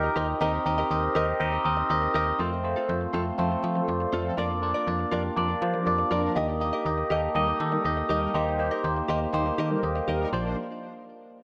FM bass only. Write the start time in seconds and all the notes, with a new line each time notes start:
0.16 D#2
0.41 D#2
0.66 D#2
0.91 D#2
1.15 D#2
1.40 D#2
1.65 D#2
1.90 D#2
2.15 D#2
2.39 F2
2.89 F2
3.14 F2
3.39 F2
3.64 F3
3.88 F2
4.13 F2
4.38 F2
4.87 F2
5.12 F2
5.37 F2
5.62 F3
5.87 F2
6.11 F2
6.36 D#2
6.86 D#2
7.10 D#2
7.35 D#2
7.60 D#3
7.85 D#2
8.10 D#2
8.34 D#2
8.84 D#2
9.09 D#2
9.34 D#2
9.58 D#3
9.83 D#2
10.08 D#2
10.33 A#1